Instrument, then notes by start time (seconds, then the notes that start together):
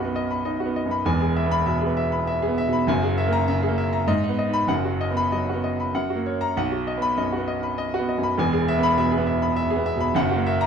grand piano
Already playing: B1 F#2 B3 D#5 F#5 B5
0.00 F#4
0.05 B3
0.16 D#5
0.31 B5
0.45 D#4 D#5
0.60 F#4
0.66 B3
0.76 D#5
0.85 F#2
0.91 B5
1.05 E1 E2 G#5
1.21 G#4
1.36 E5
1.46 B3
1.51 B5
1.66 B2 E5
1.81 G#4
1.86 B3
1.97 E5
2.12 B5
2.27 E5
2.42 G#4
2.47 B3
2.58 E5
2.68 B2
2.73 B5
2.87 F#1 F#2 G#5
3.03 G#4
3.18 E5
3.28 A#3
3.33 A#5
3.48 C#3 E5
3.63 G#4
3.68 A#3
3.78 E5
3.93 A#5
4.07 G#2 D#5
4.24 D#4
4.29 B3
4.39 D#5
4.48 D#4
4.53 B5
4.67 F#1 F#2 F#5
4.85 F#4
5.01 D#5
5.11 B3
5.17 B5
5.32 F#3 D#5
5.49 F#4
5.54 B3
5.64 D#5
5.80 B5
5.94 F#2 F#5
6.10 F#4
6.15 A#3
6.26 C#5
6.41 A#5
6.57 B1 F#5
6.72 F#4
6.87 D#5
6.97 B3
7.02 B5
7.17 F#2 D#5
7.32 F#4
7.38 B3
7.48 D#5
7.63 B5
7.78 D#5
7.94 F#4
7.99 B3
8.09 D#5
8.18 F#2
8.23 B5
8.38 E1 E2 G#5
8.53 G#4
8.68 E5
8.78 B3
8.83 B5
8.98 B2 E5
9.12 G#4
9.17 B3
9.27 E5
9.42 B5
9.56 E5
9.70 G#4
9.76 B3
9.86 E5
9.96 B2 B5
10.15 F#1 F#2 F#5
10.31 F#4
10.36 A#3
10.46 E5
10.61 A#5